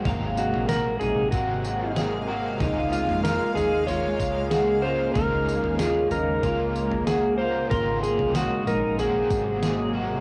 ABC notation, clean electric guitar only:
X:1
M:4/4
L:1/8
Q:1/4=94
K:Db
V:1 name="Clean electric guitar"
f2 G E G2 A G | E2 F E F2 G F | E2 F E F2 G F | F2 G E G2 A G |]